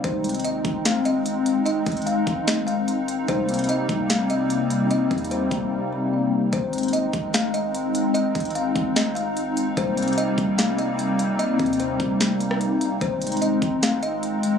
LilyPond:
<<
  \new Staff \with { instrumentName = "Kalimba" } { \time 4/4 \key aes \lydian \tempo 4 = 148 c''4 ees''4 f''8 ees''8 r4 | ees''4 f''4 ees''8 f''4. | c''4 ees''4 f''8 ees''8 r4 | ees''4 c''4 r2 |
c''4 ees''4 f''8 ees''8 r4 | ees''4 f''4 ees''8 f''4. | c''4 ees''4 f''8 ees''8 r4 | ees''4 c''4 r2 |
c''4 ees''4 f''8 ees''8 r4 | }
  \new Staff \with { instrumentName = "Analog synth pad" } { \time 4/4 \key aes \lydian << { ees'1~ | ees'1~ | ees'1~ | ees'1 |
ees'1~ | ees'1~ | ees'1~ | ees'1~ |
ees'1 | } \\ { <aes c'>1~ | <aes c'>1 | <c g bes c'>1~ | <c g bes c'>1 |
<aes c'>1~ | <aes c'>1 | <c g bes c'>1~ | <c g bes c'>1 |
<aes c'>1 | } >> }
  \new Staff \with { instrumentName = "808-style bass" } { \clef bass \time 4/4 \key aes \lydian aes,,4. aes,,2~ aes,,8~ | aes,,8 aes,,4 aes,,2~ aes,,8 | c,4 r8 c,2~ c,8~ | c,8 ees,4 c,8 r2 |
aes,,4. aes,,2~ aes,,8~ | aes,,8 aes,,4 aes,,2~ aes,,8 | c,4 r8 c,2~ c,8~ | c,8 ees,4 c,2~ c,8 |
aes,,4. aes,,2~ aes,,8 | }
  \new DrumStaff \with { instrumentName = "Drums" } \drummode { \time 4/4 <hh bd>8 hh32 hh32 hh32 hh32 hh8 <hh bd>8 <hh sn>8 hh8 hh8 hh8 | hh8 <hh bd>32 hh32 hh32 hh32 hh8 <hh bd>8 <hh sn>8 hh8 hh8 hh8 | <hh bd>8 hh32 hh32 hh32 hh32 hh8 <hh bd>8 <hh sn>8 hh8 hh8 hh8 | \tuplet 3/2 { hh16 r16 r16 <hh bd>16 hh16 hh16 } hh8 <hh bd>8 r4 r4 |
<hh bd>8 hh32 hh32 hh32 hh32 hh8 <hh bd>8 <hh sn>8 hh8 hh8 hh8 | hh8 <hh bd>32 hh32 hh32 hh32 hh8 <hh bd>8 <hh sn>8 hh8 hh8 hh8 | <hh bd>8 hh32 hh32 hh32 hh32 hh8 <hh bd>8 <hh sn>8 hh8 hh8 hh8 | \tuplet 3/2 { hh16 r16 r16 <hh bd>16 hh16 hh16 } hh8 <hh bd>8 <hh sn>8 hh16 ss16 hh8 hh8 |
<hh bd>8 hh32 hh32 hh32 hh32 hh8 <hh bd>8 <hh sn>8 hh8 hh8 hh8 | }
>>